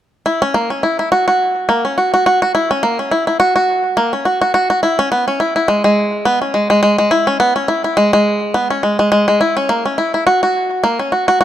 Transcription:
0.26 0.40 E4 medium
0.42 0.53 C#4 medium
0.54 0.69 A#3 medium
0.70 0.82 C#4 medium
0.83 0.98 E4 medium
0.99 1.10 E4 medium
1.12 1.26 F#4 medium
1.28 1.67 F#4 medium
1.69 1.83 A#3 medium
1.85 1.96 C#4 medium
1.98 2.12 F#4 medium
2.14 2.25 F#4 medium
2.26 2.40 F#4 medium
2.42 2.53 F#4 medium
2.55 2.69 E4 medium
2.71 2.82 C#4 medium
2.83 2.97 A#3 medium
2.99 3.10 C#4 medium
3.11 3.26 E4 medium
3.27 3.39 E4 medium
3.40 3.54 F#4 loud
3.56 3.96 F#4 medium
3.97 4.11 A#3 medium
4.13 4.24 C#4 medium
4.25 4.40 F#4 medium
4.41 4.53 F#4 medium
4.54 4.69 F#4 medium
4.70 4.81 F#4 medium
4.83 4.97 E4 medium
4.99 5.10 C#4 medium
5.12 5.26 B3 medium
5.28 5.39 C#4 medium
5.40 5.55 E4 medium
5.56 5.67 E4 medium
5.68 5.83 G#3 medium
5.84 6.24 G#3 loud
6.25 6.40 B3 medium
6.42 6.53 C#4 medium
6.54 6.69 G#3 medium
6.70 6.81 G#3 medium
6.83 6.97 G#3 medium
6.98 7.10 G#3 medium
7.11 7.26 E4 medium
7.27 7.39 C#4 medium
7.40 7.54 B3 medium
7.56 7.67 C#4 medium
7.68 7.83 E4 medium
7.84 7.96 E4 medium
7.97 8.11 G#3 loud
8.13 8.53 G#3 loud
8.54 8.69 B3 medium
8.70 8.82 C#4 medium
8.83 8.97 G#3 medium
8.99 9.10 G#3 medium
9.12 9.26 G#3 loud
9.28 9.39 G#3 medium
9.41 9.55 E4 medium
9.57 9.68 C#4 medium
9.69 9.83 A#3 medium
9.86 9.96 C#4 medium
9.98 10.13 E4 medium
10.14 10.25 E4 medium
10.27 10.41 F#4 loud
10.43 10.82 F#4 medium
10.84 10.98 A#3 medium
10.99 11.10 C#4 medium
11.12 11.26 F#4 medium
11.28 11.39 F#4 medium
11.41 11.44 F#4 loud

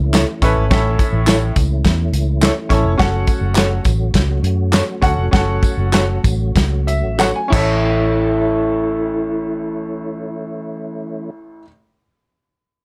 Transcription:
0.00 0.24 C#2 medium
0.00 2.95 E3 medium
0.00 7.48 A3 medium
0.00 7.48 C#4 medium
0.00 2.96 E4 medium
0.13 0.23 E4 loud
0.13 0.24 A4 loud
0.13 0.24 C#5 medium
0.13 snare loud
0.13 clap loud
0.13 closed hi-hat medium
0.13 tambourine loud
0.42 0.54 A1 medium
0.42 0.63 C#4 medium
0.42 0.63 E4 medium
0.42 0.63 A4 medium
0.42 0.64 B4 medium
0.42 kick medium
0.42 snare soft
0.42 closed hi-hat medium
0.42 tambourine medium
0.56 0.68 G#1 medium
0.71 0.95 A1 medium
0.71 1.53 A2 medium
0.71 1.52 C#4 medium
0.71 1.52 E4 medium
0.71 1.52 A4 medium
0.71 1.53 E5 medium
0.71 kick loud
0.71 snare loud
0.71 closed hi-hat medium
0.71 tambourine soft
0.99 kick medium
0.99 closed hi-hat medium
0.99 tambourine soft
1.13 1.50 A1 medium
1.27 1.37 E4 medium
1.27 1.37 A4 medium
1.27 1.38 C#5 loud
1.27 snare loud
1.27 clap loud
1.27 closed hi-hat loud
1.27 tambourine medium
1.56 1.81 C#2 medium
1.56 kick medium
1.56 closed hi-hat medium
1.56 tambourine medium
1.84 2.09 E2 medium
1.84 kick medium
1.84 snare loud
1.84 closed hi-hat loud
1.84 tambourine medium
2.12 2.50 C#2 medium
2.12 closed hi-hat medium
2.12 tambourine soft
2.42 2.52 E4 medium
2.42 2.52 A4 medium
2.42 2.53 C#5 medium
2.42 snare loud
2.42 clap loud
2.42 closed hi-hat loud
2.42 tambourine medium
2.69 2.83 A1 medium
2.69 2.90 C#4 medium
2.69 2.91 E4 medium
2.69 2.91 A4 medium
2.69 2.91 C#5 medium
2.69 kick medium
2.69 snare soft
2.69 closed hi-hat medium
2.69 tambourine medium
2.84 2.96 F1 loud
2.98 3.24 F#1 loud
2.98 7.49 F#3 medium
2.98 3.80 C#4 medium
2.98 3.80 F#4 medium
2.98 7.49 F#4 medium
2.98 3.81 A4 medium
2.98 3.81 F#5 medium
2.98 kick medium
2.98 snare loud
2.98 closed hi-hat medium
3.27 kick medium
3.27 closed hi-hat medium
3.27 tambourine soft
3.41 3.78 F#1 medium
3.55 3.66 F#4 medium
3.55 3.67 A4 medium
3.55 3.67 C#5 loud
3.55 snare loud
3.55 clap medium
3.55 closed hi-hat loud
3.55 tambourine medium
3.84 4.10 A1 medium
3.84 kick medium
3.84 closed hi-hat medium
3.84 tambourine medium
4.14 4.39 C#2 medium
4.14 kick medium
4.14 snare loud
4.14 closed hi-hat loud
4.14 tambourine medium
4.43 4.81 F#2 loud
4.43 closed hi-hat medium
4.72 4.82 F#4 medium
4.72 4.83 A4 medium
4.72 4.83 C#5 loud
4.72 snare loud
4.72 clap loud
4.72 closed hi-hat medium
4.72 tambourine medium
5.02 5.15 D2 medium
5.02 5.23 C#4 medium
5.02 5.23 F#4 medium
5.02 5.24 A4 medium
5.02 5.24 F#5 loud
5.02 kick medium
5.02 closed hi-hat medium
5.02 tambourine medium
5.17 5.30 F1 medium
5.31 5.58 F#1 loud
5.31 6.18 C#4 medium
5.31 6.19 F#4 medium
5.31 6.19 A4 medium
5.31 6.19 F#5 medium
5.31 kick loud
5.31 snare loud
5.31 closed hi-hat medium
5.31 tambourine soft
5.63 kick medium
5.63 closed hi-hat medium
5.63 tambourine soft
5.77 6.17 F#1 medium
5.93 6.03 F#4 loud
5.93 6.03 A4 loud
5.93 6.04 C#5 loud
5.93 snare loud
5.93 clap medium
5.93 closed hi-hat loud
5.93 tambourine medium
6.24 6.51 A1 medium
6.24 kick loud
6.24 closed hi-hat medium
6.24 tambourine medium
6.55 7.03 C#2 medium
6.55 kick medium
6.55 snare loud
6.55 closed hi-hat medium
6.55 tambourine soft
6.87 7.17 E5 medium
6.87 closed hi-hat medium
6.87 tambourine soft
7.03 7.31 A1 medium
7.19 7.30 F#4 medium
7.19 7.30 A4 medium
7.19 7.31 C#5 medium
7.19 7.35 F#5 medium
7.19 snare medium
7.19 clap loud
7.19 tambourine medium
7.36 7.51 G#5 medium
7.48 11.62 A1 medium
7.48 11.30 E3 medium
7.48 11.30 A3 medium
7.48 11.58 C#4 medium
7.48 11.64 E4 medium
7.48 11.61 E4 medium
7.48 11.30 E4 medium
7.52 11.31 C#4 medium
7.52 11.63 A4 medium
7.52 11.67 A4 loud
7.52 11.70 C#5 medium
7.52 11.66 E5 medium
7.52 kick loud
7.52 crash medium
7.52 tambourine medium

